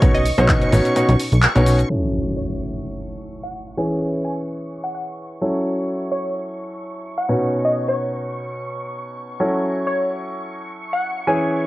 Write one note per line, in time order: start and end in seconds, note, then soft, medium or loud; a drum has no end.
0.00 0.32 B1 loud
0.00 0.16 B2 medium
0.00 0.16 C#4 medium
0.00 0.16 D#4 medium
0.00 0.16 F#4 medium
0.00 0.16 B4 medium
0.00 0.16 C#5 loud
0.00 1.89 C#6 medium
0.00 kick loud
0.00 closed hi-hat loud
0.00 shaker soft
0.15 0.25 D#5 medium
0.15 closed hi-hat soft
0.15 shaker soft
0.26 open hi-hat loud
0.26 shaker medium
0.38 0.67 B1 loud
0.38 0.70 B2 medium
0.38 0.70 C#4 medium
0.38 0.70 D#4 medium
0.38 0.70 F#4 medium
0.38 0.70 B4 medium
0.38 1.04 C#5 medium
0.38 0.70 D#5 loud
0.38 closed hi-hat soft
0.38 shaker soft
0.49 kick loud
0.49 clap loud
0.49 closed hi-hat medium
0.49 shaker soft
0.62 closed hi-hat soft
0.62 shaker soft
0.73 0.81 A1 medium
0.73 0.93 B2 medium
0.73 0.93 C#4 medium
0.73 0.93 D#4 medium
0.73 0.93 F#4 medium
0.73 0.93 B4 medium
0.73 0.93 C#5 loud
0.73 open hi-hat loud
0.73 shaker medium
0.85 closed hi-hat soft
0.85 shaker soft
0.96 1.10 B2 medium
0.96 1.10 C#4 medium
0.96 1.10 D#4 medium
0.96 1.10 F#4 medium
0.96 1.10 B4 medium
0.96 1.10 C#5 medium
0.96 closed hi-hat loud
0.96 shaker soft
1.09 1.16 B1 loud
1.09 closed hi-hat soft
1.09 shaker soft
1.20 open hi-hat loud
1.20 shaker medium
1.32 1.47 B1 medium
1.32 closed hi-hat soft
1.32 shaker soft
1.43 clap loud
1.43 closed hi-hat medium
1.43 shaker soft
1.56 1.84 B1 loud
1.56 1.77 B2 medium
1.56 1.77 C#4 medium
1.56 1.77 D#4 medium
1.56 1.77 F#4 medium
1.56 1.77 B4 medium
1.56 1.77 C#5 loud
1.56 closed hi-hat soft
1.56 shaker soft
1.66 open hi-hat loud
1.66 shaker medium
1.79 closed hi-hat soft
1.79 shaker soft
1.90 3.75 F#3 medium
1.90 3.75 C#4 medium
1.90 3.75 E4 medium
1.90 3.75 F#4 medium
1.90 3.75 A4 medium
1.90 3.75 C#5 medium
1.90 11.67 C#6 medium
1.90 impact medium
2.37 2.73 C#5 medium
3.43 3.53 F#5 medium
3.77 5.39 E3 medium
3.77 5.39 C#4 medium
3.77 5.39 E4 medium
3.77 5.39 G#4 medium
3.77 5.39 B4 medium
3.77 5.39 C#5 medium
3.77 4.13 G#5 medium
4.24 4.36 G#5 medium
4.84 4.91 F#5 medium
4.95 5.03 F#5 medium
5.41 7.26 F#3 medium
5.41 7.26 C#4 medium
5.41 7.26 E4 medium
5.41 7.26 F#4 medium
5.41 7.26 A4 medium
5.41 7.26 C#5 medium
6.12 6.48 C#5 medium
7.18 7.28 F#5 medium
7.29 9.37 B2 medium
7.29 9.37 C#4 medium
7.29 9.37 D#4 medium
7.29 9.37 F#4 medium
7.29 9.37 B4 medium
7.29 9.37 C#5 medium
7.65 7.75 D#5 medium
7.88 8.54 C#5 medium
9.40 11.25 F#3 medium
9.40 11.25 C#4 medium
9.40 11.25 E4 medium
9.40 11.25 F#4 medium
9.40 11.25 A4 medium
9.40 11.25 C#5 medium
9.87 10.23 C#5 medium
10.93 11.03 F#5 medium
11.27 11.67 E3 medium
11.27 11.67 C#4 medium
11.27 11.67 E4 medium
11.27 11.67 G#4 medium
11.27 11.67 B4 medium
11.27 11.67 C#5 medium
11.27 11.63 G#5 medium